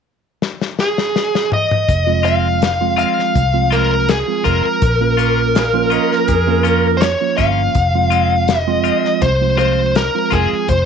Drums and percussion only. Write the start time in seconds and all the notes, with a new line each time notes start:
0.42 snare
0.61 snare
0.79 snare
0.98 snare
1.16 snare
1.35 snare
1.52 mid tom
1.71 mid tom
1.89 kick, closed hi-hat
2.25 closed hi-hat
2.62 snare, closed hi-hat
2.99 closed hi-hat
3.19 snare
3.36 kick, closed hi-hat
3.72 closed hi-hat
4.09 snare, closed hi-hat
4.45 kick, closed hi-hat
4.82 kick, closed hi-hat
5.19 closed hi-hat
5.55 snare, closed hi-hat
5.92 closed hi-hat
6.12 snare
6.28 kick, closed hi-hat
6.65 closed hi-hat
7.01 snare, closed hi-hat
7.38 kick, snare, closed hi-hat
7.75 kick, closed hi-hat
8.12 closed hi-hat
8.48 snare, closed hi-hat
8.85 closed hi-hat
9.05 snare
9.22 kick, closed hi-hat
9.59 closed hi-hat
9.95 snare, closed hi-hat
10.32 kick, closed hi-hat
10.69 kick, closed hi-hat